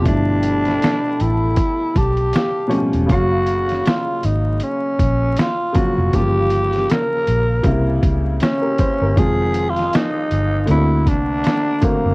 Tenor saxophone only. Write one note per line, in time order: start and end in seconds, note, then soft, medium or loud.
0.08 1.23 D4 loud
1.21 1.99 E4 medium
1.97 2.85 G4 medium
3.11 3.88 F#4 loud
3.87 4.27 F4 medium
4.25 4.65 D#4 medium
4.63 5.40 C#4 medium
5.39 5.78 F4 loud
5.76 6.16 F#4 medium
6.15 6.92 G4 loud
6.91 8.04 A#4 loud
8.42 9.20 C#4 medium
9.18 9.71 G#4 loud
9.70 9.96 F4 loud
9.94 10.70 D#4 loud
10.71 11.10 E4 medium
11.08 11.86 D4 loud
11.84 12.15 A#3 loud